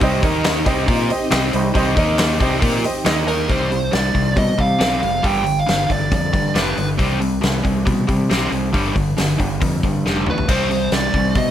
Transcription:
Already playing: C4 D#4 G4 D#5
0.00 C2 C3 G3 C4 G4 C5 D#5, kick, open hi-hat
0.21 D#2 D#3 A#3 D#4 A#4 D#5, kick, open hi-hat
0.44 snare, clap, open hi-hat
0.65 C2 C3 G3 C4 D#4 G4 C5 D#5, kick, open hi-hat
0.87 A#2 A#3 F4 A#4, kick, open hi-hat
1.10 G4 C5 D#5, muted overdriven electric guitar stroke, muted fingered electric bass stroke, open hi-hat
1.30 C2 C3 G3 C4 G4 C5 D#5, snare, clap, open hi-hat
1.53 C2 C3 G3 G4 C5 D#5, open hi-hat
1.74 C2 C3 G3 C4 G4 C5 D#5, kick, open hi-hat
1.95 D#2 D#3 A#3 D#4 A#4 D#5, kick, open hi-hat
2.19 snare, clap, open hi-hat
2.39 C2 C3 G3 C4 D#4 G4 C5 D#5, kick, open hi-hat
2.61 A#2 A#3 F4 A#4, kick, open hi-hat
2.83 G4 C5 D#5, muted overdriven electric guitar stroke, muted fingered electric bass stroke, open hi-hat
3.04 D#2 D#3 A#3 D#4 A#4 D#5, snare, clap, open hi-hat
3.26 D#4 A#4 D#5, open hi-hat
3.49 C2 C3 G3 C4 C5, kick, open hi-hat
3.71 C3 G3, open hi-hat
3.92 C2 C3 G3 D5, snare, open hi-hat
4.14 C2 C3 G3, kick, open hi-hat
4.36 B2 C3 G3 D#5, kick, open hi-hat
4.58 C3 G3 F5, kick, open hi-hat
4.79 B1 C3 G3 C4, snare, open hi-hat
5.01 F1 C3 G3 F5, open hi-hat
5.22 G1 G2 D3 G3 G5, kick, open hi-hat
5.44 G2 D3, open hi-hat
5.59 F5
5.66 G1 G2 D3, snare, open hi-hat
5.89 G1 G2 D3 D5, kick, open hi-hat
6.11 F2 G2 D3 D5, kick, open hi-hat
6.33 G2 D3, kick, open hi-hat
6.55 F1 G2 D3 G3 B4, snare, open hi-hat
6.77 G1 G2 D3, open hi-hat
6.98 C2 C3 G3 C4, kick, open hi-hat
7.20 C3 G3, open hi-hat
7.42 C2 C3 G3, snare, open hi-hat
7.63 C2 C3 G3, kick, open hi-hat
7.85 B2 C3 G3, kick, open hi-hat
8.07 C3 G3, kick, open hi-hat
8.29 B1 C3 G3 C4, snare, open hi-hat
8.51 C2 C3 G3, open hi-hat
8.73 G1 G2 D3 G3, kick, open hi-hat
8.95 G2 D3, kick, open hi-hat
9.18 G1 G2 D3, snare, open hi-hat
9.38 G1 G2 D3, kick, open hi-hat
9.60 F2 G2 D3, kick, open hi-hat
9.83 G2 D3, kick, open hi-hat
10.05 F1 G2 D3 G3, snare
10.16 high tom
10.26 D2 G2 D3 B4, mid tom
10.38 floor tom
10.48 C2 C3 G3 C4 C5, kick, open hi-hat, crash
10.70 C3 G3, open hi-hat
10.92 C2 C3 G3 D5, snare, open hi-hat
11.14 C2 C3 G3, kick, open hi-hat
11.35 B2 C3 G3 D#5, kick, open hi-hat

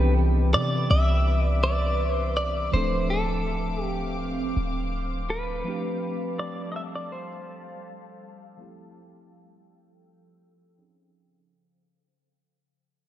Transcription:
Already playing: C2 E3 B3 C4 D4 G4 B4 E5 D6
0.54 C3 D5
0.90 C2 E5
1.47 D5
1.64 D5
2.15 C5
2.37 D5
2.71 D1 F3 A3 C4 D4 C5 F5 D6
2.76 A4
3.10 A4
3.83 G4
4.56 D1
5.30 B4
5.64 F3 G3 A3 C4 D4 A4 F5 A5
5.69 G4
6.39 D5
6.72 D#5
6.76 E5
6.95 D5
7.12 C5
8.57 F3 A3 C4 E4 G5 E6
8.62 G4
10.77 F3 C4 C#4 D#4 G#4

